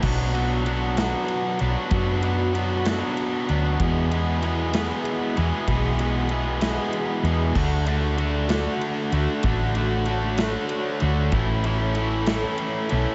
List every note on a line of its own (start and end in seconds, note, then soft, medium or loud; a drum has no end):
0.02 1.13 B1 loud
0.02 0.33 B2 medium
0.02 0.33 F#3 medium
0.02 0.33 B3 medium
0.02 0.34 D4 loud
0.02 3.76 F#4 medium
0.02 0.34 F#4 loud
0.02 3.77 D5 medium
0.02 7.52 B5 medium
0.02 kick loud
0.02 crash loud
0.33 0.64 B2 medium
0.33 0.65 F#3 medium
0.33 0.65 B3 medium
0.33 0.67 D4 medium
0.33 0.66 F#4 loud
0.33 ride medium
0.64 0.96 B2 loud
0.64 0.97 F#3 loud
0.64 0.98 B3 medium
0.64 0.97 D4 loud
0.64 0.97 F#4 loud
0.64 ride medium
0.97 1.58 B2 medium
0.97 1.59 F#3 medium
0.97 1.60 B3 loud
0.97 1.60 D4 medium
0.97 1.60 F#4 medium
0.97 snare loud
0.97 ride loud
1.28 ride medium
1.59 1.74 B1 medium
1.59 1.88 B2 medium
1.59 1.90 F#3 medium
1.59 1.91 B3 loud
1.59 1.91 D4 medium
1.59 1.91 F#4 medium
1.59 ride medium
1.89 3.01 F#2 loud
1.89 2.21 B2 loud
1.89 2.22 F#3 loud
1.89 2.23 B3 loud
1.89 2.23 D4 medium
1.89 2.23 F#4 loud
1.89 kick loud
1.89 ride medium
2.22 2.52 B2 medium
2.22 2.53 F#3 medium
2.22 2.55 B3 medium
2.22 2.55 D4 medium
2.22 2.54 F#4 loud
2.22 ride medium
2.53 2.82 B2 medium
2.53 2.83 F#3 loud
2.53 2.84 B3 medium
2.53 2.85 D4 loud
2.53 2.85 F#4 loud
2.53 ride medium
2.83 3.45 B2 medium
2.83 3.46 F#3 medium
2.83 3.47 B3 loud
2.83 3.48 D4 loud
2.83 3.47 F#4 medium
2.83 snare loud
2.83 ride loud
3.17 ride medium
3.47 3.76 D2 medium
3.47 3.77 B2 medium
3.47 3.77 F#3 medium
3.47 3.80 B3 medium
3.47 3.78 D4 medium
3.47 3.78 F#4 medium
3.47 ride medium
3.79 4.11 E2 medium
3.79 4.90 E2 loud
3.79 4.10 B2 medium
3.79 4.12 E3 medium
3.79 4.12 G#3 medium
3.79 4.13 B3 loud
3.79 7.52 G#4 medium
3.79 4.13 G#4 loud
3.79 7.52 E5 medium
3.79 kick loud
3.79 ride medium
4.11 4.41 E2 medium
4.11 4.40 B2 medium
4.11 4.42 E3 loud
4.11 4.42 G#3 loud
4.11 4.43 B3 loud
4.11 4.43 G#4 loud
4.11 ride medium
4.41 4.71 E2 medium
4.41 4.71 B2 medium
4.41 4.72 E3 loud
4.41 4.73 G#3 medium
4.41 4.74 B3 medium
4.41 4.74 G#4 medium
4.41 ride medium
4.72 5.35 E2 loud
4.72 5.35 B2 loud
4.72 5.36 E3 loud
4.72 5.37 G#3 loud
4.72 5.38 B3 loud
4.72 5.38 G#4 loud
4.72 snare loud
4.72 ride loud
5.05 ride medium
5.36 5.67 E2 medium
5.36 5.51 E2 medium
5.36 5.67 B2 medium
5.36 5.68 E3 loud
5.36 5.68 G#3 loud
5.36 5.70 B3 medium
5.36 5.70 G#4 loud
5.36 ride medium
5.67 6.77 B1 loud
5.67 5.97 E2 loud
5.67 5.97 B2 medium
5.67 5.98 E3 medium
5.67 5.99 G#3 loud
5.67 6.00 B3 loud
5.67 6.00 G#4 loud
5.67 kick loud
5.67 ride medium
5.98 6.29 E2 medium
5.98 6.29 B2 medium
5.98 6.29 E3 medium
5.98 6.30 G#3 loud
5.98 6.32 B3 medium
5.98 6.31 G#4 loud
5.98 ride medium
6.29 6.60 E2 loud
6.29 6.60 B2 loud
6.29 6.61 E3 loud
6.29 6.61 G#3 loud
6.29 6.63 B3 medium
6.29 6.63 G#4 loud
6.29 ride medium
6.61 7.23 E2 loud
6.61 7.24 B2 medium
6.61 7.24 E3 loud
6.61 7.24 G#3 loud
6.61 7.26 B3 loud
6.61 7.26 G#4 loud
6.61 snare loud
6.61 ride loud
6.93 ride medium
7.23 7.51 E2 medium
7.23 7.54 E2 medium
7.23 7.54 B2 medium
7.23 7.54 E3 medium
7.23 7.54 G#3 medium
7.23 7.56 B3 medium
7.23 ride medium
7.27 7.55 G#4 medium
7.55 8.66 D2 loud
7.55 7.86 D3 medium
7.55 7.87 A3 medium
7.55 7.88 D4 loud
7.55 11.29 F#4 medium
7.55 7.88 F#4 loud
7.55 9.42 D5 medium
7.55 13.15 B5 medium
7.55 kick loud
7.55 crash medium
7.87 8.17 D3 loud
7.87 8.17 A3 medium
7.87 8.18 D4 medium
7.87 8.19 F#4 medium
7.87 ride medium
8.17 8.48 D3 medium
8.17 8.50 A3 loud
8.17 8.50 D4 medium
8.17 8.50 F#4 loud
8.17 ride medium
8.49 9.11 D3 loud
8.49 9.13 A3 loud
8.49 9.13 D4 loud
8.49 9.13 F#4 loud
8.49 snare loud
8.49 ride loud
8.81 ride medium
9.12 9.26 D2 medium
9.12 9.42 D3 medium
9.12 9.44 A3 medium
9.12 9.44 D4 medium
9.12 9.44 F#4 medium
9.12 ride medium
9.43 10.54 A1 medium
9.43 9.74 D3 medium
9.43 9.75 A3 loud
9.43 9.75 D4 loud
9.43 9.75 F#4 loud
9.43 11.31 C#5 medium
9.43 kick loud
9.43 ride loud
9.75 10.06 D3 medium
9.75 10.06 A3 medium
9.75 10.07 D4 medium
9.75 10.07 F#4 medium
9.75 ride medium
10.06 10.37 D3 loud
10.06 10.38 A3 loud
10.06 10.38 D4 loud
10.06 10.39 F#4 loud
10.06 ride medium
10.38 10.99 D3 loud
10.38 11.01 A3 loud
10.38 11.01 D4 medium
10.38 11.02 F#4 loud
10.38 snare loud
10.38 ride loud
10.69 ride medium
11.00 11.29 D2 medium
11.00 11.30 D3 medium
11.00 11.31 A3 medium
11.00 11.31 D4 medium
11.00 11.32 F#4 medium
11.00 ride medium
11.32 12.43 A1 loud
11.32 11.62 A2 medium
11.32 11.63 E3 loud
11.32 11.63 A3 loud
11.32 11.65 C#4 loud
11.32 11.65 E4 medium
11.32 13.15 A4 medium
11.32 13.15 C#5 medium
11.32 kick loud
11.32 ride medium
11.63 11.93 A2 medium
11.63 11.94 E3 medium
11.63 11.94 A3 medium
11.63 11.96 C#4 loud
11.63 11.96 E4 medium
11.63 ride medium
11.94 12.26 A2 loud
11.94 12.27 E3 medium
11.94 12.27 A3 medium
11.94 12.27 C#4 medium
11.94 12.28 E4 loud
11.94 ride medium
12.26 12.90 A2 loud
12.26 12.90 E3 loud
12.26 12.90 A3 loud
12.26 12.90 C#4 loud
12.26 12.91 E4 loud
12.26 snare loud
12.26 ride loud
12.58 ride medium
12.89 13.05 B1 medium
12.89 13.15 A2 medium
12.89 13.15 E3 medium
12.89 13.15 A3 loud
12.89 13.15 C#4 medium
12.89 13.15 E4 medium
12.89 ride medium